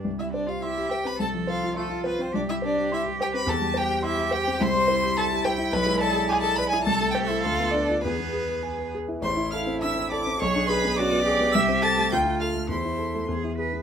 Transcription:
<<
  \new Staff \with { instrumentName = "Violin" } { \time 2/4 \key c \major \tempo 4 = 105 r16 e''16 d''16 f''16 e''8 g''16 b''16 | a''8 f''8 a'8 b'16 c''16 | d''16 e''16 d''8 e''8 g''16 b''16 | a''8 g''8 e''8 g''8 |
\key a \minor c'''4 a''8 g''8 | b''8 a''8 gis''16 a''16 b''16 gis''16 | a''8 g''16 e''16 f''8 d''8 | b'4. r8 |
c'''8 f'''8 e'''8 d'''8 | cis'''8 b''8 d'''4 | e'''8 a'''8 g'''8 f'''8 | c'''4 r4 | }
  \new Staff \with { instrumentName = "Violin" } { \time 2/4 \key c \major r16 e'16 d'16 f'16 e'8 g'16 b'16 | a'8 f'8 a8 b16 c'16 | d'16 e'16 d'8 e'8 g'16 b'16 | a'8 g'8 e'8 g'8 |
\key a \minor c''4 a'8 g'8 | b'8 a'8 gis'16 a'16 b'16 gis'16 | a'8 g'16 e'16 f'8 d'8 | b4. r8 |
c''8 f''8 e''8 d''8 | cis''8 b'8 d''4 | e''8 a''8 g''8 f''8 | c''4 r4 | }
  \new Staff \with { instrumentName = "Cello" } { \time 2/4 \key c \major r4 g'4 | a'4 f'4 | g'2~ | g'4 g'4 |
\key a \minor e'8 e'4.~ | e'2 | a'2 | gis'4. r8 |
e'2 | gis'4 fis'8 g'8~ | g'4 f'4 | e'4 gis'8 b'8 | }
  \new Staff \with { instrumentName = "Grand piano" } { \time 2/4 \key c \major c,16 g16 c''16 g'16 c'''16 g'16 c''16 c'16 | c,16 f16 c''16 f'16 c'''16 f'16 c''16 c'16 | c,16 g16 c''16 g'16 c'''16 g'16 c''16 c'16 | e,16 g16 c''16 g'16 c'''16 g'16 c''16 c'16 |
\key a \minor c,16 g16 c''16 g'16 c'''16 g'16 c''16 e'16 | b,,16 gis16 d''16 gis'16 d'''16 gis'16 d''16 e'16 | c,16 a16 c''16 a'16 d,16 b16 b'16 f'16 | e,16 b16 gis'16 b'16 gis''16 b'16 gis'16 e'16 |
a,,16 e'16 a'16 c'16 d'16 c'16 a'16 c'16 | b,,16 d'16 gis'16 b16 cis'16 b16 gis'16 b16 | c,16 c'16 a'16 a16 d,16 f'16 a'16 a16 | e,16 e'16 a'16 a16 e,16 e'16 gis'16 b16 | }
>>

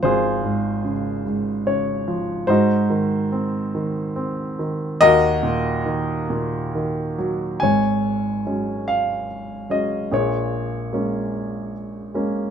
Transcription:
<<
  \new Staff \with { instrumentName = "Grand piano" } { \time 6/8 \key aes \mixolydian \tempo 4. = 49 << { c''4 r4 des''4 | c''2. | ees''2~ ees''8 r8 | aes''4 r8 f''4 ees''8 |
des''2 r4 | } \\ { <f' aes'>4. r4. | <ees' ges'>2. | <ges' bes'>2~ <ges' bes'>8 r8 | des''4. r4. |
aes'2 r4 | } >> }
  \new Staff \with { instrumentName = "Grand piano" } { \clef bass \time 6/8 \key aes \mixolydian <aes,, aes, des f>8 aes,8 des8 aes,8 des8 f8 | aes,8 ees8 c'8 ees8 c'8 ees8 | ees,8 bes,8 ees8 bes,8 ees8 ges8 | <aes,, aes,>4 <ges aes des'>4 r8 <ges aes des'>8 |
<bes,, bes,>4 <aes bes des'>4 r8 <aes bes des'>8 | }
>>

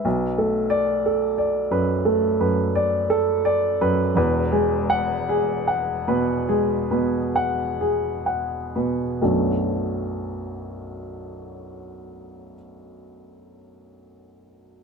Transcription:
<<
  \new Staff \with { instrumentName = "Upright piano" } { \time 4/4 \key e \mixolydian \tempo 4 = 48 \tuplet 3/2 { b'8 a'4 a'8 d''8 b'8 a'8 b'8 d''8 a'8 d''8 b'8 } | \tuplet 3/2 { b'8 gis'4 gis'8 fis''8 b'8 gis'8 b'8 fis''8 gis'8 fis''8 b'8 } | r1 | }
  \new Staff \with { instrumentName = "Upright piano" } { \clef bass \time 4/4 \key e \mixolydian << { \tuplet 3/2 { r4 d''8 } r2. | \tuplet 3/2 { r4 fis''8 } r2. | <b,, fis, fis a b d'>1 | } \\ { \tuplet 3/2 { b,,8 a4 r4 fis,8 a8 fis,4 r4 fis,8 } | \tuplet 3/2 { <e,, e,>8 gis4 r4 b,8 gis8 b,4 r4 b,8 } | r1 | } >> }
>>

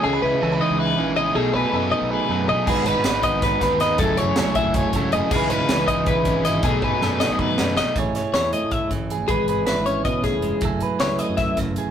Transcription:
<<
  \new Staff \with { instrumentName = "Clean electric guitar" } { \time 7/8 \key cis \minor \tempo 4 = 159 gis'8 b'4 dis''8 b'4 dis''8 | gis'8 b'4 dis''8 b'4 dis''8 | gis'8 b'4 dis''8 b'4 dis''8 | a'8 cis''4 e''8 cis''4 dis''8 |
gis'8 b'4 dis''8 b'4 dis''8 | gis'8 b'4 dis''8 b'4 dis''8 | r4 cis''8 dis''8 e''8 r4 | gis'4 b'8 cis''8 dis''8 gis'4 |
r4 cis''8 dis''8 e''8 r4 | }
  \new Staff \with { instrumentName = "Clean electric guitar" } { \time 7/8 \key cis \minor << { a'16 b'16 e'8 a'16 b'16 dis'8 e'4 e'8 | a'8 gis'8 a'8 dis'8 gis'8 a'8 gis'8 | <dis' fis' b'>8 b'8 b'8 fis'8 b'8 b'8 b'8 | <a e' gis' a'>8 gis'8 a'8 e'8 gis'8 a'8 gis'8 |
<e dis' e' b'>8 e'8 b'8 dis'8 e'4 e'8 | a'8 gis'8 a'8 dis'2 | <a e' gis' cis''>8 cis''8 e'2 gis'8 | b'8 b'8 e'2~ e'8 |
<a e' gis' a'>8 b'8 e'2 gis'8 | } \\ { cis4 e4. cis4 | b,4 b4. fis4 | gis4 dis'4. dis4 | fis4 a4. cis4 |
cis4 e4. cis4 | b,4 b4 dis8 cis8 b,8 | a,4. a4 e4 | gis4. cis'8 b8 a8 gis8 |
fis4. a4 cis4 | } >> }
  \new Staff \with { instrumentName = "Overdriven electric guitar" } { \clef bass \time 7/8 \key cis \minor <cis e gis cis'>8 <e gis cis'>8 <cis e gis cis'>8 <e gis cis'>4 <e gis cis'>8 <cis e gis cis'>8 | <b, fis a dis'>8 <fis a dis'>8 <b, fis a dis'>8 <fis a dis'>4 <fis a dis'>8 <b, fis a dis'>8 | <gis, dis gis b dis'>8 <gis b dis'>8 <gis, dis gis b dis'>8 <gis b dis'>4 <gis b dis'>8 <dis gis b dis'>8 | <fis, cis fis a cis'>8 <fis a cis'>8 <fis, cis fis a cis'>8 <fis a cis'>4 <fis a cis'>8 <cis fis a cis'>8 |
<cis e gis cis'>8 <e gis cis'>8 <cis e gis cis'>8 <e gis cis'>4 <e gis cis'>8 <cis e gis cis'>8 | <b, fis a dis'>8 <fis a dis'>8 <b, fis a dis'>8 <fis a dis'>4 <fis a dis'>8 <b, fis a dis'>8 | r2. r8 | r2. r8 |
r2. r8 | }
  \new Staff \with { instrumentName = "Fingered electric bass" } { \clef bass \time 7/8 \key cis \minor cis,8 cis,16 cis16 cis,8 r16 cis,8. bes,,4 | b,,8 b,,16 b,16 fis,8 r16 b,,8 r16 fis,8 b,,16 r16 | gis,,8 gis,,16 gis,16 gis,,8 r16 gis,,8. dis,4 | fis,,8 fis,,16 fis,16 cis,8 r16 fis,,8 r16 cis,8 fis,,16 r16 |
cis,8 cis,16 cis16 cis,8 r16 cis,8. gis,,4 | b,,8 b,,16 b,16 fis,8 r16 b,,8 r16 fis,8 b,,16 r16 | a,,8 r8 e,8 r16 a,8. a,,8 r16 a,,16 | gis,,8 gis,,8. gis,,8. b,8. f,,8 r16 |
fis,,8 r8 cis,8 r16 fis,8. fis,,8 r16 e,,16 | }
  \new DrumStaff \with { instrumentName = "Drums" } \drummode { \time 7/8 r4 r4 r4. | r4 r4 r4. | <cymc bd>8 hh8 <hh sn>8 <hh bd>8 <hh bd sn>8 <hh bd sn>8 <hh sn>8 | <hh bd>8 hh8 <hh sn>8 <hh bd>8 <hh bd>8 <hh bd>8 hh8 |
<cymc bd>8 hh8 <hh sn>8 <hh bd>8 <hh bd>8 <hh bd>8 <hh sn>8 | <hh bd>8 bd8 sn8 sn8 bd8 sn8 sn8 | <hh bd>8 <hh sn>8 <hh sn>8 hh8 <hh bd>8 <hh bd>8 hh8 | <hh bd>8 hh8 <hh sn>8 hh8 <hh bd>8 <hh bd sn>8 hh8 |
<hh bd>8 hh8 <hh sn>8 hh8 <hh bd sn>8 <hh bd sn>8 hh8 | }
>>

